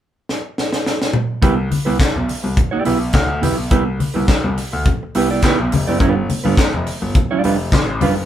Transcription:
0.29 snare
0.58 snare
0.73 snare
0.86 snare
1.02 snare
1.13 mid tom
1.42 grand piano C2, clean electric guitar B3 E4 G4 B4, kick, closed hi-hat, muted conga
1.57 muted clean electric guitar stroke
1.70 muted clean electric guitar stroke, open hi-hat, muted conga, high conga
1.85 grand piano C2, clean electric guitar B3 E4 G4 B4, high conga
2.00 kick, snare, clap, closed hi-hat, muted conga
2.15 grand piano B1, muted clean electric guitar stroke, low conga
2.29 open hi-hat, muted conga
2.43 grand piano C2, muted clean electric guitar stroke
2.57 muted clean electric guitar stroke, kick, closed hi-hat, muted conga, low conga
2.71 clean electric guitar B3 E4 G4 D5
2.85 grand piano B1, clean electric guitar B3 E4 G4 B4, open hi-hat, muted conga
3.01 muted clean electric guitar stroke
3.13 grand piano D2, muted clean electric guitar stroke, kick, snare, clap, closed hi-hat, high conga
3.29 muted clean electric guitar stroke
3.42 grand piano B1, clean electric guitar B3 E4 G4 B4, open hi-hat, high conga, low conga
3.58 muted clean electric guitar stroke
3.71 grand piano C2, clean electric guitar B3 E4 G4 B4, kick, closed hi-hat, muted conga
3.86 muted clean electric guitar stroke
3.99 muted clean electric guitar stroke, open hi-hat, muted conga, high conga
4.14 grand piano C2, clean electric guitar B3 E4 G4 B4, high conga
4.28 muted clean electric guitar stroke, kick, snare, clap, closed hi-hat, muted conga
4.44 grand piano C2, muted clean electric guitar stroke, low conga
4.57 open hi-hat, muted conga
4.72 grand piano D2, muted clean electric guitar stroke
4.85 muted clean electric guitar stroke, kick, closed hi-hat, low conga
5.03 muted clean electric guitar stroke
5.15 grand piano C2, clean electric guitar B3 E4 G4 B4, open hi-hat
5.31 clean electric guitar B3 E4 G4 D5
5.42 clean electric guitar B3 E4 G4 B4, kick, snare, clap, closed hi-hat, high conga
5.59 grand piano B1, muted clean electric guitar stroke
5.72 grand piano F1, muted clean electric guitar stroke, open hi-hat, muted conga, high conga, low conga
5.87 grand piano F#1, clean electric guitar B3 E4 G4 D5
6.00 grand piano G1, clean electric guitar G3 D4 F4 B4, kick, closed hi-hat, muted conga
6.17 muted clean electric guitar stroke
6.29 muted clean electric guitar stroke, open hi-hat, high conga
6.44 grand piano G1, clean electric guitar G3 D4 F4 B4, high conga
6.57 muted clean electric guitar stroke, kick, snare, clap, closed hi-hat
6.74 grand piano F1, muted clean electric guitar stroke, low conga
6.87 open hi-hat, muted conga
7.02 grand piano G1, muted clean electric guitar stroke
7.15 muted clean electric guitar stroke, kick, closed hi-hat, low conga
7.31 clean electric guitar G3 D4 F4 D5
7.44 grand piano F1, clean electric guitar G3 D4 F4 B4, open hi-hat
7.72 grand piano A1, muted clean electric guitar stroke, kick, snare, clap, closed hi-hat, high conga
7.88 muted clean electric guitar stroke
8.01 grand piano F#1, clean electric guitar G3 D4 F4 B4, open hi-hat, muted conga, high conga, low conga
8.17 muted clean electric guitar stroke

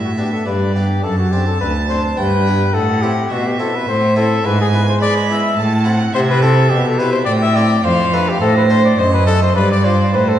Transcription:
Already playing: harpsichord A2, cello A2, violin E5
0.04 trumpet F#4
0.18 harpsichord B3 D4, trumpet G4
0.33 trumpet A4
0.46 harpsichord G2, cello G2, trumpet B4, violin D5
0.74 harpsichord B3 D4, trumpet G4
1.03 harpsichord F#2, cello F#2, trumpet A4, violin A5
1.18 trumpet F#4
1.31 harpsichord C4 D4, trumpet G4
1.47 trumpet A4
1.61 harpsichord D2, cello D2, trumpet B4
1.89 harpsichord C4 D4, trumpet C5
2.17 cello G2, harpsichord G2, trumpet B4, violin G5
2.47 harpsichord B3 D4 G4
2.74 cello A2, harpsichord A2, trumpet A4, violin F#5
3.02 harpsichord C4 E4, trumpet G4
3.31 harpsichord B2, cello B2, trumpet F#4, violin E5
3.47 trumpet G4
3.59 harpsichord C4 E4, trumpet A4
3.76 trumpet B4
3.88 harpsichord A2, cello A2, trumpet C5
4.16 harpsichord C4 E4, trumpet A4
4.44 harpsichord G#2, cello G#2, trumpet B4, violin G#5
4.61 trumpet G#4
4.73 harpsichord B3 E4, trumpet B4
4.89 trumpet C5
5.01 harpsichord G#3, cello G#3, trumpet D5, violin B5
5.29 harpsichord B3 E4, trumpet E5
5.56 harpsichord A2, cello A2, violin A5
5.84 harpsichord C4 E4 A4, violin F#5
6.13 cello C3, harpsichord C3, trumpet C5, violin E5
6.30 trumpet B4
6.42 harpsichord C4 E4 G4, trumpet A4
6.70 harpsichord B2, cello B2, trumpet G4
6.86 trumpet A4
6.99 harpsichord C4 E4 G4, trumpet B4
7.13 trumpet C5
7.25 cello A2, harpsichord A2, trumpet D5, violin G5
7.42 trumpet E5
7.56 harpsichord C4 E4 A4, trumpet D5
7.84 cello F2, harpsichord F2, trumpet C5, violin F5
8.13 harpsichord A3 D4 A4, trumpet B4
8.29 trumpet G4
8.41 cello A2, harpsichord A2, trumpet A4, violin C5
8.57 trumpet B4
8.70 harpsichord A3 D4 A4, trumpet C5
8.85 trumpet D5
8.98 harpsichord F#2, cello F#2, trumpet C5, violin D#5
9.13 trumpet B4
9.27 harpsichord A3 D#4 F#4, trumpet A4
9.43 trumpet C5
9.55 harpsichord G2, cello G2, trumpet B4, violin D5
9.72 trumpet D5
9.84 harpsichord D4 F4, trumpet C5
10.13 harpsichord A2, cello A2, trumpet B4, violin C5
10.28 trumpet A4

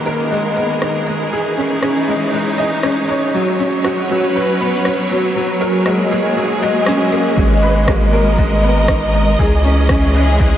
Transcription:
Already playing: string section D#3 F#4 G#4 A#4, upright piano G#3 A#3 B4
0.06 upright piano A#4, closed hi-hat
0.31 upright piano G#3
0.56 upright piano B3, closed hi-hat
0.82 upright piano D#4, cross-stick
1.07 upright piano G#3, closed hi-hat
1.31 string section E3, upright piano G#4
1.45 string section D#4
1.57 upright piano C#4, closed hi-hat
1.82 upright piano C#4, cross-stick
2.08 upright piano G#3, closed hi-hat
2.22 string section C#5
2.33 upright piano G#3
2.58 upright piano D#5, closed hi-hat
2.83 upright piano C#4, cross-stick
3.09 upright piano C#5, closed hi-hat
3.34 string section F#3, upright piano F#3
3.59 upright piano C#4, closed hi-hat
3.66 string section C#4
3.82 upright piano F#4, string section B4, cross-stick
4.10 upright piano F#3, closed hi-hat
4.36 upright piano B4
4.60 upright piano B3, closed hi-hat
4.85 upright piano B3, cross-stick
5.11 upright piano F#3, closed hi-hat
5.36 upright piano F#3
5.52 string section A#3 G#4
5.61 upright piano A#4, closed hi-hat
5.73 mid tom
5.86 upright piano G#3, cross-stick
6.11 upright piano G#4, closed hi-hat
6.37 upright piano F#3
6.62 upright piano G#3, closed hi-hat
6.86 upright piano C#4, cross-stick
7.12 upright piano A#3, closed hi-hat
7.37 analog synth bass G#1, string section G#3, upright piano G#3, kick
7.57 string section D#5
7.62 upright piano B4, closed hi-hat
7.88 upright piano A#3, kick, cross-stick
8.12 string section A#4, upright piano A#4, closed hi-hat
8.38 upright piano G#3, kick
8.63 upright piano B3, closed hi-hat
8.88 upright piano D#4, kick, cross-stick
9.13 upright piano G#3, closed hi-hat
9.39 analog synth bass C#2, string section E3, upright piano G#4, kick
9.45 string section C#4
9.64 upright piano C#4, closed hi-hat
9.82 string section G#4
9.89 upright piano C#4, kick, cross-stick
10.14 upright piano G#3, closed hi-hat
10.40 upright piano G#3, kick

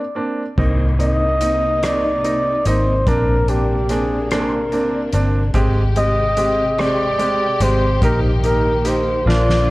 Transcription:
Already playing: flugelhorn D5
0.15 upright piano A#3 C4 D4
0.58 fingered electric bass C2, string section C3 A#3 D#4, upright piano A#3 C4 D#4, kick, crash
0.98 upright piano A#3 C4 D#4, flugelhorn D#5, closed hi-hat
1.41 upright piano A#3 C4 D#4, closed hi-hat
1.83 upright piano A#3 C4 D#4, flugelhorn D5, cross-stick, closed hi-hat
2.24 upright piano A#3 C4 D#4, closed hi-hat
2.65 fingered electric bass G#1, upright piano A#3 C4 D#4, flugelhorn C5, closed hi-hat
3.07 fingered electric bass A#1, string section C3 A#3 D4, upright piano A#3 C4 D4, flugelhorn A#4, kick, closed hi-hat
3.48 upright piano A#3 C4 D4, flugelhorn G4, closed hi-hat
3.89 upright piano A#3 C4 D4, flugelhorn G#4, cross-stick, closed hi-hat
4.31 upright piano A#3 C4 D4, flugelhorn A#4, cross-stick, closed hi-hat
4.72 upright piano A#3 C4 D4, closed hi-hat
5.12 fingered electric bass G1, upright piano A#3 C4 D4, closed hi-hat
5.54 fingered electric bass G#1, string section C3 G#3 G4, upright piano G#3 C4 G4, kick, closed hi-hat
5.96 upright piano G#3 C4 G4, flugelhorn D#5, closed hi-hat
6.37 upright piano G#3 C4 G4, closed hi-hat
6.78 upright piano G#3 C4 G4, flugelhorn D5, cross-stick, closed hi-hat
7.19 upright piano G#3 C4 G4, closed hi-hat
7.60 fingered electric bass G#1, upright piano G#3 C4 G4, flugelhorn C5, closed hi-hat
8.02 fingered electric bass A#1, string section D#3 A#3, upright piano A#3 D#4 G4, flugelhorn A#4, kick, closed hi-hat
8.43 upright piano A#3 D#4 G4, flugelhorn A#4, closed hi-hat
8.85 upright piano A#3 D#4 G4, flugelhorn C5, cross-stick, closed hi-hat
9.26 fingered electric bass A#1, string section D3 F4, upright piano A#3 D4 F4, flugelhorn D5, snare
9.49 snare

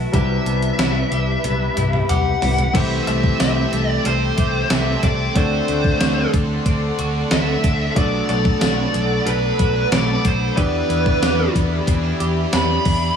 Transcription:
Already playing: clean electric guitar E3 A3 E4 F#4, ambient pad F#4 B4 E5 A5
0.12 fingered electric bass C2, grand piano C3 G3 E4 B4, clean electric guitar G3 G4, ambient pad G4 B4 B5, lead electric guitar E5, kick, closed hi-hat
0.46 fingered electric bass C2, clean electric guitar B3, closed hi-hat
0.62 closed hi-hat
0.78 fingered electric bass C2, clean electric guitar E4, snare, closed hi-hat, tambourine
1.11 fingered electric bass C2, clean electric guitar G4, closed hi-hat
1.44 fingered electric bass C2, clean electric guitar B3, closed hi-hat, high tom
1.76 fingered electric bass C2, clean electric guitar E4, closed hi-hat, mid tom
1.93 mid tom
2.09 fingered electric bass C2, clean electric guitar G4, lead electric guitar F#5, closed hi-hat, mid tom
2.42 fingered electric bass C2, clean electric guitar E4, floor tom, open hi-hat
2.58 closed hi-hat, floor tom
2.73 fingered electric bass C2, distorted electric guitar C3 G3 C4, clean electric guitar E3 G4, grand piano A3 C4 E4 G4 C5, ambient pad A4 E5 G5 C6, lead electric guitar E5, kick, closed hi-hat, crash
3.07 fingered electric bass C2, distorted electric guitar G3 C4, clean electric guitar A3, lead electric guitar E5, closed hi-hat
3.24 kick
3.40 fingered electric bass C2, clean electric guitar G4, lead electric guitar E5, snare, closed hi-hat, tambourine
3.72 fingered electric bass C2, clean electric guitar A3, closed hi-hat
3.92 lead electric guitar D5
4.03 fingered electric bass C2, distorted electric guitar C3, clean electric guitar C4, lead electric guitar C5, closed hi-hat
4.07 distorted electric guitar G3 C4
4.37 fingered electric bass C2, clean electric guitar G4, kick, closed hi-hat
4.70 fingered electric bass C2, clean electric guitar A3, lead electric guitar E5, snare, closed hi-hat, tambourine
5.02 fingered electric bass C2, clean electric guitar C4, lead electric guitar D5, kick, closed hi-hat
5.34 fingered electric bass D2, distorted electric guitar D3 A3 D4, clean electric guitar A3 F#4, grand piano C4 D4 F#4 A4 D5, lead electric guitar C5, ambient pad D5 F#5, kick, closed hi-hat
5.68 fingered electric bass D2, clean electric guitar A3, distorted electric guitar A3 D4, closed hi-hat
5.84 kick
6.00 fingered electric bass D2, clean electric guitar F#4, snare, closed hi-hat, tambourine
6.34 fingered electric bass D2, clean electric guitar A3, kick, closed hi-hat
6.64 fingered electric bass D2, distorted electric guitar D3, clean electric guitar C4, kick, closed hi-hat
6.68 distorted electric guitar A3 D4
6.99 fingered electric bass D2, clean electric guitar F#4, closed hi-hat
7.31 fingered electric bass D2, clean electric guitar A3, lead electric guitar E5, snare, closed hi-hat, tambourine
7.63 fingered electric bass D2, clean electric guitar C4, kick, closed hi-hat
7.95 fingered electric bass B1, grand piano B2 D4 F#4 A4 D5, distorted electric guitar B2 F#3, clean electric guitar A3 F#4, ambient pad D5 B5, lead electric guitar D5, kick, closed hi-hat
7.99 distorted electric guitar B3
8.28 fingered electric bass B1, distorted electric guitar F#3 B3, clean electric guitar A3, lead electric guitar D5, closed hi-hat
8.45 kick
8.61 fingered electric bass B1, clean electric guitar F#4, lead electric guitar D5, snare, closed hi-hat, tambourine
8.94 fingered electric bass B1, clean electric guitar A3, closed hi-hat
9.25 fingered electric bass B1, distorted electric guitar B2, clean electric guitar D4, lead electric guitar B4, closed hi-hat
9.29 distorted electric guitar F#3
9.59 fingered electric bass B1, clean electric guitar F#4, kick, closed hi-hat
9.92 fingered electric bass B1, clean electric guitar A3, lead electric guitar D5, snare, closed hi-hat, tambourine
10.24 fingered electric bass B1, clean electric guitar D4, lead electric guitar C5, kick, closed hi-hat
10.56 fingered electric bass E2, distorted electric guitar E3 B3 E4, clean electric guitar E3 G4, grand piano B3 D4 E4 G4 D5, ambient pad G4 E5, lead electric guitar B4, kick, closed hi-hat
10.89 fingered electric bass E2, clean electric guitar B3, distorted electric guitar B3 E4, closed hi-hat
11.06 kick
11.22 fingered electric bass E2, clean electric guitar G4, snare, closed hi-hat, tambourine
11.55 fingered electric bass E2, clean electric guitar B3, kick, closed hi-hat
11.85 fingered electric bass E2, distorted electric guitar E3, clean electric guitar C4, kick, closed hi-hat
11.90 distorted electric guitar B3 E4
12.03 clean electric guitar D4
12.20 fingered electric bass E2, clean electric guitar G4, closed hi-hat
12.53 fingered electric bass E2, clean electric guitar B3, lead electric guitar B5, snare, closed hi-hat, tambourine
12.85 fingered electric bass E2, clean electric guitar D4, kick, open hi-hat

